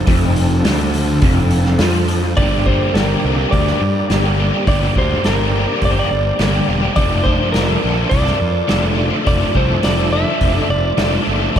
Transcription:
Already playing: tonewheel organ F3 D4 A4
0.07 fingered electric bass F1, overdriven electric guitar F2, kick, open hi-hat
0.36 open hi-hat
0.64 fingered electric bass D2, overdriven electric guitar D3, snare, open hi-hat
0.94 open hi-hat
1.22 fingered electric bass F1, overdriven electric guitar F2, kick, open hi-hat
1.51 open hi-hat
1.65 snare
1.79 fingered electric bass F2, overdriven electric guitar F3, snare, open hi-hat
2.08 open hi-hat
2.36 fingered electric bass G1, overdriven electric guitar G2 D3 G3 A#3 D4 G4, tonewheel organ G4 D5 A#5, electric slide guitar D5, kick, open hi-hat
2.66 overdriven electric guitar G3 A#3 D4 G4, electric slide guitar C5, kick
2.94 fingered electric bass G1, overdriven electric guitar G2 D3 G3 A#3 D4 G4, electric slide guitar A#4, snare, open hi-hat
3.09 overdriven electric guitar G3 A#3 D4 G4
3.24 fingered electric bass C2, overdriven electric guitar G3 A#3 D4 G4
3.38 overdriven electric guitar G3 A#3 D4 G4
3.51 fingered electric bass D2, electric slide guitar D5, kick, open hi-hat
3.67 overdriven electric guitar G3 A#3 D4 G4, snare
3.81 fingered electric bass G2, muted overdriven electric guitar stroke
4.10 fingered electric bass G1, overdriven electric guitar G2 D3 G3 A#3 D4 G4, snare, open hi-hat
4.24 overdriven electric guitar G3 A#3 D4 G4
4.38 overdriven electric guitar G3 A#3 D4 G4
4.52 overdriven electric guitar G3 A#3 D4 G4
4.66 fingered electric bass G1, overdriven electric guitar G2 D3 G3 A#3 D4 G4, electric slide guitar D5, kick, open hi-hat
4.95 fingered electric bass D2, overdriven electric guitar G3 A#3 D4 G4, electric slide guitar C5, kick
5.24 fingered electric bass G1, overdriven electric guitar G2 D3 G3 A#3 D4 G4, electric slide guitar A#4, snare, open hi-hat
5.39 overdriven electric guitar G3 A#3 D4 G4
5.54 overdriven electric guitar G3 A#3 D4 G4
5.68 overdriven electric guitar G3 A#3 D4 G4
5.82 fingered electric bass G1, electric slide guitar D5, kick, open hi-hat
5.91 electric slide guitar C5
5.97 overdriven electric guitar G3 A#3 D4 G4, electric slide guitar D5
6.10 fingered electric bass G1, muted overdriven electric guitar stroke
6.39 fingered electric bass G1, overdriven electric guitar G2 D3 G3 A#3 D4 G4, snare, open hi-hat
6.54 overdriven electric guitar G3 A#3 D4 G4
6.67 fingered electric bass E1, overdriven electric guitar G3 A#3 D4 G4
6.81 overdriven electric guitar G3 A#3 D4 G4
6.95 fingered electric bass F1, overdriven electric guitar F3 A3 D4 A4, tonewheel organ F4 A5 D6, electric slide guitar D5, kick, open hi-hat
7.24 overdriven electric guitar F3 A3 D4 A4, electric slide guitar C5, kick
7.52 fingered electric bass F1, overdriven electric guitar F3 A3 D4 A4, electric slide guitar A#4, snare, open hi-hat
7.67 overdriven electric guitar A3 D4 A4
7.81 fingered electric bass A#1, overdriven electric guitar F3 A3 D4 A4
7.97 overdriven electric guitar A3 D4 A4
8.09 fingered electric bass C2, electric slide guitar D5, kick, open hi-hat
8.25 overdriven electric guitar A3 D4 A4, snare
8.39 fingered electric bass F2, muted overdriven electric guitar stroke
8.68 fingered electric bass F1, overdriven electric guitar F3 A3 D4 A4, snare, open hi-hat
8.82 overdriven electric guitar A3 D4 A4
8.95 overdriven electric guitar F3 A3 D4 A4
9.10 overdriven electric guitar A3 D4 A4
9.24 fingered electric bass F1, overdriven electric guitar F3 A3 D4 A4, electric slide guitar D5, kick, open hi-hat
9.53 fingered electric bass C2, overdriven electric guitar F3 A3 D4 A4, electric slide guitar C5, kick
9.82 fingered electric bass F1, overdriven electric guitar F3 A3 D4 A4, electric slide guitar D5, snare, open hi-hat
9.96 overdriven electric guitar A3 D4 A4
10.11 overdriven electric guitar F3 A3 D4 A4, electric slide guitar E5
10.25 overdriven electric guitar A3 D4 A4
10.41 fingered electric bass F1, kick, open hi-hat
10.54 overdriven electric guitar A3 D4 A4
10.70 fingered electric bass F1, electric slide guitar D5, muted overdriven electric guitar stroke
10.97 fingered electric bass F1, overdriven electric guitar F3 A3 D4 A4, snare, open hi-hat
11.12 overdriven electric guitar A3 D4 A4
11.27 fingered electric bass F#1, overdriven electric guitar F3 A3 D4 A4
11.41 overdriven electric guitar A3 D4 A4
11.56 fingered electric bass G1, overdriven electric guitar G2 D3, kick, open hi-hat

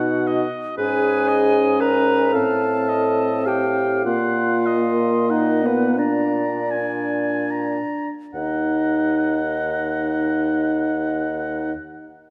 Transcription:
Already playing: bassoon B2, french horn D#4, clarinet F#4, oboe F#5, flute F#5
0.27 oboe D#5
0.77 bassoon G#2, french horn C#4, clarinet G#4, oboe B4, flute G#5
1.28 oboe D#5
1.80 clarinet A#4, oboe B4, flute A#5
2.33 bassoon A2, french horn C4, clarinet A4, oboe F5, flute A5
2.88 oboe D#5
3.45 clarinet G4, oboe F5, flute G5
4.05 bassoon A#2, french horn A#3, clarinet F4, flute F5, oboe F#5
4.66 oboe D#5
5.30 clarinet D#4, flute D#5, oboe F#5
5.63 clarinet B3, flute B4
5.96 clarinet D4, french horn D4, flute D5, oboe A#5
6.70 oboe G#5
7.51 oboe A#5
8.34 bassoon D#2, clarinet D#4, french horn D#4, flute D#5, oboe F#5

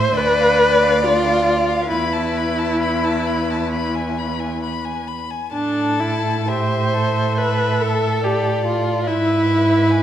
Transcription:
Already playing: cello A2, violin C5, viola C5
0.00 violin E5
0.17 cello D2, viola B4, violin D5
0.40 violin F5
0.60 violin D5
0.82 violin F5
1.03 viola F4, violin D5
1.27 violin F5
1.47 violin D5
1.68 violin F5
1.89 cello E2, viola E4, violin B4 B5
2.13 violin A5
2.37 violin B5
2.58 violin A5
2.81 violin B5
3.04 violin A5
3.27 violin B5
3.50 violin A5
3.72 violin B5
3.94 violin G#5
4.18 violin B5
4.40 violin G#5
4.63 violin B5
4.85 violin G#5
5.08 violin B5
5.30 violin G#5
5.53 cello A2, viola D4, violin A4 A5
6.00 viola E4
6.48 violin G4 E5, viola C5
6.93 violin A4
7.38 viola B4, violin E5
7.82 viola A4
8.24 viola G4, violin D5
8.65 viola F4
9.06 cello G#2, viola E4, violin B4 E5
9.90 violin G#5

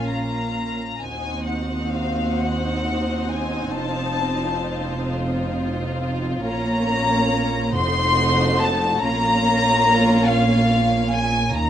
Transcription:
Already playing: double bass section A#1, cello section A#2, viola section A#3 C#4, violin section F4 F5
0.07 violin section A#5
1.00 double bass section D#2, cello section D#2, viola section C4 D#4, violin section G#5
1.04 violin section F#4 C5
1.44 violin section F#5
1.90 violin section F5
2.37 violin section F#5
3.30 violin section G#5
3.76 double bass section F1, cello section F2, violin section F4 A5
6.43 double bass section A#1, cello section A#2, viola section A#3 C#4, violin section C#5 A#5
7.74 double bass section F1, cello section F2, viola section A3 D#4, violin section F#4 C5 C6
8.61 violin section A5
9.02 double bass section A#1, cello section A#2, viola section A#3 C#4, violin section F4 C#5 A#5
10.26 violin section F5
11.13 violin section G#5
11.56 cello section D#2, double bass section D#2, violin section A#5

